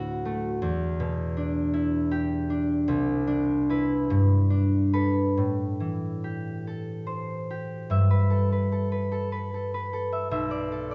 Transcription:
Already playing: D2 A2 A3 D4 E4 F#4
0.25 A3
0.62 E2
1.00 B2
1.37 D4
1.74 E4
2.11 G4
2.50 D4
2.88 C2
3.27 D4
3.70 E4 B4
4.10 G2
4.50 D4
4.93 A4 B4
5.37 A2
5.80 E3
6.24 G4
6.67 A4
7.07 C5
7.50 G4
7.90 G2 E5
8.11 B4
8.30 A4
8.52 B4
8.72 A4
8.92 B4
9.12 A4
9.32 B4
9.54 A4
9.74 B4
9.93 A4
10.13 E5
10.31 B1 E5
10.51 D5
10.72 A4
10.91 D5

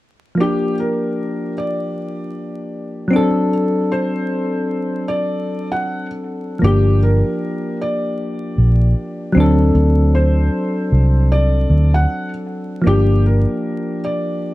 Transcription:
0.35 F3 A#3
0.40 D4 G4
0.80 A#4
1.58 D5
3.08 F#3 C4
3.13 D4 A4
3.92 C5
5.08 D5
5.72 F#5
6.59 G1 F3 A#3
6.64 D4 G4
7.03 A#4
7.81 D5
8.58 A#1
9.32 D2 F#3 C4
9.37 D4 A4
9.75 D2
10.15 C5
10.92 C2
11.32 D5
11.70 D2
11.94 F#5
12.82 F3 A#3
12.87 G1 D4 G4
13.26 A#4
14.05 D5

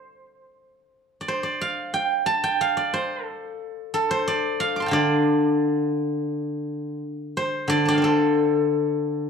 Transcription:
Already playing: C5 D5
1.21 D5
1.28 C5
1.43 D5
1.61 F5
1.94 G5
2.26 A5
2.44 G5
2.61 F5
2.77 D5
2.94 C5
3.25 A4
3.94 A4
4.11 C5
4.28 D5
4.60 F5
4.76 D6
4.80 A5 C6
4.86 F5 G5
4.91 D3 D5
7.37 C5
7.68 D3 D5
7.85 D5 A5
7.90 F5 G5
7.98 D5
8.02 A4 C5

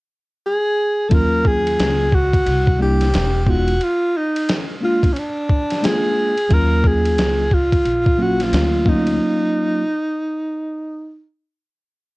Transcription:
0.46 G#4
1.09 D#2 F#3 A#3 C#4 F4 A4, kick, ride
1.14 A#4
1.45 G#4, kick
1.67 ride
1.79 C#2, snare, hi-hat pedal, ride
2.12 F#4, kick
2.33 kick, ride
2.46 C2, ride
2.67 kick
2.79 G3 A#3 D4 E4 G4
3.01 snare, ride
3.13 E1, snare, hi-hat pedal, ride
3.44 G#3 B3 D#4 G4, kick
3.49 F4 F#4
3.68 ride
3.81 F4, ride
4.17 D#4
4.36 ride
4.49 snare, hi-hat pedal, ride
4.81 G#3 A#3 D4 F4
5.03 kick, ride
5.13 C#4, ride
5.18 D4
5.49 kick
5.70 snare, ride
5.82 G#3 A#3 D4 F4 G#4, snare, hi-hat pedal, ride
6.38 ride
6.49 D#2 F#3 A#3 C#4 F4, kick, ride
6.53 A#4
6.84 G#4, kick
7.06 ride
7.18 C#2, snare, hi-hat pedal, ride
7.51 F4, kick
7.73 kick, ride
7.85 A#1, ride
8.06 kick
8.18 F#3 A#3 C#4 F4
8.22 F#4
8.40 F4, snare, ride
8.53 D2, snare, hi-hat pedal, ride
8.85 F#3 A#3 C#4 F4, kick
8.89 D#4
9.07 ride

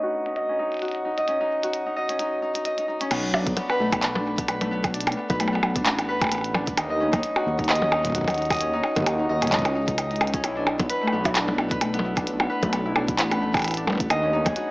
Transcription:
Already playing: A3 B3 C#4 D#4 B4 D#5
0.03 F#4
0.26 D#4, closed hi-hat
0.36 D#5, closed hi-hat
0.49 C#4
0.59 D#4
0.72 closed hi-hat
0.74 closed hi-hat
0.77 closed hi-hat
0.79 closed hi-hat
0.82 F#4, closed hi-hat
0.85 closed hi-hat
0.88 closed hi-hat
0.91 closed hi-hat
0.95 closed hi-hat
1.05 D#4
1.18 D#5, closed hi-hat
1.28 C#4, closed hi-hat
1.41 D#4
1.63 F#4, closed hi-hat
1.73 closed hi-hat
1.86 D#4
1.96 D#5
2.09 C#4, closed hi-hat
2.19 D#4, closed hi-hat
2.42 D#4
2.55 D#4, closed hi-hat
2.65 D#5, closed hi-hat
2.78 D#4, closed hi-hat
2.88 D#4
3.01 C#4, closed hi-hat
3.11 B1 B3, closed hi-hat, crash, percussion blips
3.34 D4, percussion blips
3.47 kick, closed hi-hat
3.57 B3, closed hi-hat, percussion blips
3.70 B4, percussion blips
3.80 B1 A3
3.92 kick, closed hi-hat, percussion blips
4.03 clap, closed hi-hat
4.15 D4, percussion blips
4.38 B3, kick, closed hi-hat
4.48 B4, closed hi-hat, percussion blips
4.61 A3, closed hi-hat, percussion blips
4.71 B3
4.84 kick, closed hi-hat, percussion blips
4.94 D4, closed hi-hat
5.01 closed hi-hat
5.07 closed hi-hat, percussion blips
5.12 closed hi-hat
5.17 B3
5.30 B1 B4, kick, closed hi-hat, percussion blips
5.40 A3, closed hi-hat, percussion blips
5.48 percussion blips
5.53 B3, percussion blips
5.63 B1, percussion blips
5.76 D4, kick, closed hi-hat
5.86 A1, clap, closed hi-hat
5.99 B3, closed hi-hat, percussion blips
6.09 B4
6.21 A3, kick, closed hi-hat, percussion blips
6.24 percussion blips
6.27 percussion blips
6.29 B3, closed hi-hat, percussion blips
6.32 percussion blips
6.35 percussion blips
6.38 percussion blips
6.41 closed hi-hat, percussion blips
6.54 D4, percussion blips
6.67 kick, closed hi-hat
6.77 D#2 D#4, closed hi-hat, percussion blips
6.90 D#5
7.00 C#4
7.13 D#4, kick, closed hi-hat, percussion blips
7.23 closed hi-hat
7.36 F#4, percussion blips
7.46 D#2
7.59 D#4, kick, closed hi-hat
7.64 closed hi-hat
7.69 D#5, clap, closed hi-hat, percussion blips
7.75 closed hi-hat
7.82 C#4, percussion blips
7.92 D#4, percussion blips
8.05 kick, closed hi-hat
8.07 kick
8.10 kick
8.12 F#4, kick
8.15 kick, closed hi-hat
8.18 kick
8.21 kick
8.24 kick, closed hi-hat, percussion blips
8.30 closed hi-hat
8.34 D#4, closed hi-hat
8.38 closed hi-hat
8.42 closed hi-hat
8.45 closed hi-hat
8.50 D#5, kick, closed hi-hat, percussion blips
8.53 closed hi-hat
8.55 closed hi-hat
8.57 closed hi-hat
8.59 C#4, closed hi-hat
8.61 closed hi-hat
8.73 D#4
8.83 percussion blips
8.96 D#2 F#4, kick, closed hi-hat, percussion blips
8.98 kick
9.00 kick
9.02 kick
9.04 kick, closed hi-hat, percussion blips
9.19 D#4
9.29 D#2 D#5
9.42 C#4, kick, closed hi-hat, percussion blips
9.45 kick
9.47 kick, closed hi-hat
9.50 C#2 D#4, kick
9.52 kick, clap, closed hi-hat
9.55 kick, closed hi-hat
9.59 kick
9.62 kick, closed hi-hat, percussion blips
9.75 D#4
9.88 D#4, kick, closed hi-hat
9.98 D#5, closed hi-hat, percussion blips
10.11 D#4, closed hi-hat
10.16 closed hi-hat
10.21 D#4, closed hi-hat, percussion blips
10.27 closed hi-hat
10.34 C#4, kick, closed hi-hat
10.44 B1 E4, closed hi-hat, percussion blips
10.57 D4
10.67 percussion blips
10.79 B3, kick, closed hi-hat, percussion blips
10.89 B4, closed hi-hat
11.02 A3
11.07 percussion blips
11.12 B1 B3
11.25 E4, kick, closed hi-hat, percussion blips
11.35 D4, clap, closed hi-hat
11.48 percussion blips
11.58 B3, percussion blips
11.71 B4, kick, closed hi-hat
11.81 A3, closed hi-hat, percussion blips
11.94 B3, closed hi-hat
11.99 percussion blips
12.04 E4
12.17 D4, kick, closed hi-hat, percussion blips
12.27 closed hi-hat
12.40 B3, percussion blips
12.50 B4
12.62 B1 A3, kick, closed hi-hat, percussion blips
12.73 B3, closed hi-hat, percussion blips
12.85 E4
12.96 B1 D4, percussion blips
13.08 kick, closed hi-hat
13.18 A1 B3, clap, closed hi-hat
13.31 B4, closed hi-hat, percussion blips
13.41 A3
13.54 B3, kick, closed hi-hat, percussion blips
13.57 closed hi-hat, percussion blips
13.59 closed hi-hat, percussion blips
13.62 E4, closed hi-hat, percussion blips
13.64 closed hi-hat, percussion blips
13.68 closed hi-hat, percussion blips
13.71 closed hi-hat, percussion blips
13.74 D4, closed hi-hat, percussion blips
13.77 closed hi-hat
13.87 percussion blips
13.90 percussion blips
13.92 percussion blips
13.95 percussion blips
13.98 B3, kick, closed hi-hat, percussion blips
14.10 D#2 D#5, closed hi-hat, percussion blips
14.23 C#4
14.33 D#4
14.46 G#4, kick, closed hi-hat, percussion blips
14.56 F#4, closed hi-hat

